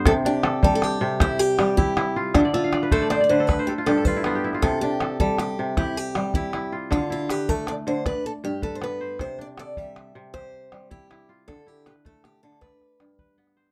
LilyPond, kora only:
<<
  \new Staff \with { instrumentName = "Kora" } { \time 12/8 \key c \major \tempo 4. = 105 << { r1. | e''16 d''16 e''16 f''16 d''16 b'16 c''16 d''16 c''16 d''16 b'16 a'16 b'16 c''16 a'16 f'16 g'16 a'16 f'16 e'16 f'16 g'16 e'16 f'16~ | f'16 r1 r4. r16 | r1. |
r1. | r1. | } \\ { c''8 d'8 a'4. r8 g'4. e'4 f'8~ | f'8 r1 r4. | r8 d'8 a'4. r8 g'4. e'4 f'8~ | f'8 e'8 b'4. r8 d''4. b'4 c''8~ |
c''8 d'8 a'4. r8 g'4. e'4 f'8~ | f'8 e'8 b'4. r8 d''4. b'4 c''8 | } >> }
  \new Staff \with { instrumentName = "Kora" } { \clef bass \time 12/8 \key c \major c4 r8 g4 c4 r8 g4 e'4 | d4 r8 a4 d8 r4 g,4 b4 | c4 r8 g4 c4 r8 g4 e'4 | d4 r8 a4 d8 r4 g,4 b4 |
c4 r8 g4 c4 r8 g4 e'4 | d4 r8 a4 d8 r4 g,4 b4 | }
>>